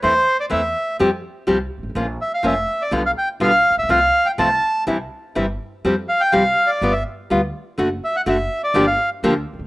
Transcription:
X:1
M:4/4
L:1/16
Q:1/4=124
K:F
V:1 name="Bandoneon"
c3 d e4 z8 | z2 e f e3 d2 f g2 f3 e | f3 g a4 z8 | z2 f g f3 d2 e2 z4 z |
z2 e ^f e3 d2 =f2 z4 z |]
V:2 name="Nylon-string guitar"
[E,A,CE]2 z2 [E,A,CE]2 z2 [F,G,CG]2 z2 [F,G,CG]2 z2 | [F,B,_DF]2 z2 [F,B,DF]2 z2 [=B,,=D,G,=B,F]2 z2 [B,,D,G,B,F]2 z2 | [C,F,A,CF]2 z2 [C,F,A,CF]2 z2 [C,E,G,CE]2 z2 [C,E,G,CE]2 z2 | [F,G,CG]2 z2 [F,G,CG]2 z2 [G,=B,F]2 z2 [G,B,F]2 z2 |
[D,A,D^F]2 z2 [D,A,DF]2 z2 [D,=F,B,DG]2 z2 [D,F,B,DG]2 z2 |]
V:3 name="Upright bass" clef=bass
E,,3/2 z2 z/2 E,,3/2 z2 z/2 F,,3/2 z2 z/2 C,,3/2 z G,,,/2 _A,,,/2 =A,,,/2 | B,,,3/2 z2 z/2 F,,,3/2 z2 z/2 =B,,,3/2 z2 z/2 B,,,3/2 z A,,,/2 _B,,,/2 =B,,,/2 | C,,3/2 z2 z/2 C,,3/2 z2 z/2 C,,3/2 z2 z/2 G,,,3/2 z2 z/2 | F,,3/2 z2 z/2 C,,3/2 z2 z/2 G,,,3/2 z2 z/2 D,,3/2 z2 z/2 |
^F,,,3/2 z2 z/2 F,,,3/2 z2 z/2 G,,,3/2 z2 z/2 D,,3/2 z =B,,,/2 C,,/2 z/2 |]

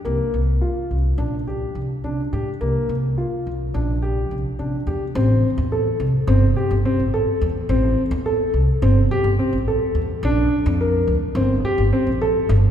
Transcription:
X:1
M:9/8
L:1/16
Q:3/8=71
K:Aphr
V:1 name="Grand piano"
B,4 F4 D2 G4 D2 G2 | B,4 F4 D2 G4 D2 G2 | C4 A4 C2 G2 C2 A4 | C4 A4 C2 G2 C2 A4 |
D4 B4 C2 G2 C2 A4 |]
V:2 name="Upright bass" clef=bass
C,, z C,,2 z2 C,,2 B,,,4 C,, z C, z A,, z | C,, z C,,2 z2 C,,2 B,,,4 C,, z C, z E,, z | A,,,2 z E,,3 C,, z G,,,2 z G,,, z A,,,2 z E,,2 | A,,,2 z E,,3 C,, z G,,,2 z G,,, z A,,,2 z E,,2 |
B,,,2 z F,,3 D,, z G,,,2 z G,,, z B,,,2 z G,,,2 |]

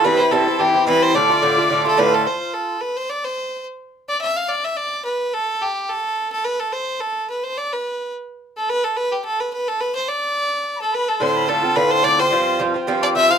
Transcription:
X:1
M:4/4
L:1/16
Q:"Swing" 1/4=215
K:Ddor
V:1 name="Tin whistle"
b2 b2 a4 g4 b2 c'2 | d'12- d'2 z2 | z16 | z16 |
z16 | z16 | z16 | z16 |
z16 | z8 z3/2 b/2 a2 b2 a2 | c'2 b2 a4 b2 c'2 d'2 c'2- | c'4 z6 d'2 e'2 f'2 |]
V:2 name="Fiddle"
B3/2 c/2 B2 A4 G4 B2 c2 | d8- d2 A2 B2 A2 | c4 A4 B2 c2 d2 c2- | c4 z6 d2 e2 f2 |
d2 e2 d4 B4 A4 | G4 A6 A2 B2 A2 | c4 A4 B2 c2 d2 B2- | B4 z6 A2 B2 A2 |
B2 G2 A2 B2 B2 A2 B2 c2 | d8- d2 A2 B2 A2 | c4 A4 B2 c2 d2 c2- | c4 z6 d2 e2 f2 |]
V:3 name="Bouzouki"
[G,,E,CE]2 [E,CE]2 [G,,E,CE]2 [E,CE]2 [G,,E,CE]2 [E,CE]2 [G,,E,CE]4 | [A,,D,A,F]2 [D,A,F]2 [A,,D,A,F]2 [D,A,F]2 [A,,D,A,F]2 [D,A,F]2 [A,,D,A,F]4 | z16 | z16 |
z16 | z16 | z16 | z16 |
z16 | z16 | [A,,D,CF]4 [A,,D,CF]2 [D,CF]2 [A,,D,CF]4 [A,,D,CF]2 [D,CF]2 | [G,,F,CF]4 [G,,F,CF]2 [F,CF]2 [G,,F,CF]4 [G,,F,CF]2 [F,CF]2 |]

